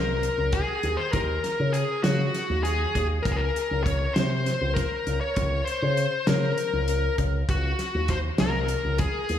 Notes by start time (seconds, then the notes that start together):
Already playing: C2 A#4
0.23 closed hi-hat
0.38 C#2
0.52 G#4, kick, closed hi-hat
0.83 D#2, closed hi-hat
0.97 C5
1.12 D#2 A#4, kick, closed hi-hat
1.44 snare, closed hi-hat
1.60 C#3
1.73 G#4, closed hi-hat
2.03 C#3 F#4, snare, closed hi-hat
2.34 snare, closed hi-hat
2.50 D#2
2.63 G#4, closed hi-hat
2.95 D#2, kick, closed hi-hat
3.23 C#2 A#4, kick, closed hi-hat
3.32 G#4
3.36 A#4
3.56 closed hi-hat
3.71 C#2
3.84 C#5, kick, closed hi-hat
4.14 C3 C5, snare, closed hi-hat
4.46 snare, closed hi-hat
4.61 C#2
4.75 A#4, kick, snare, closed hi-hat
5.07 C#2, closed hi-hat
5.21 C#5
5.36 C#2, kick, closed hi-hat
5.65 C5, closed hi-hat
5.82 C#3
5.97 closed hi-hat
6.27 C#3 A#4, snare, closed hi-hat
6.58 closed hi-hat
6.73 C#2
6.88 closed hi-hat
7.18 C#2, kick, closed hi-hat
7.49 C#2 F#4, kick, closed hi-hat
7.79 snare, closed hi-hat
7.95 D#2
8.08 C5, kick, closed hi-hat
8.38 C2 A#4, snare, closed hi-hat
8.68 closed hi-hat
8.85 C#2
8.98 G#4, kick, closed hi-hat
9.29 D#2, closed hi-hat